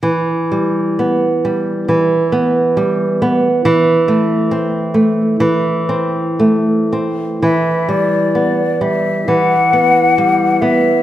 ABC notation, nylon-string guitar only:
X:1
M:4/4
L:1/8
Q:1/4=66
K:Em
V:1 name="Nylon-string guitar" clef=bass
E, G, B, G, E, B, G, B, | E, A, C A, E, C A, C | E, G, B, G, E, B, G, B, |]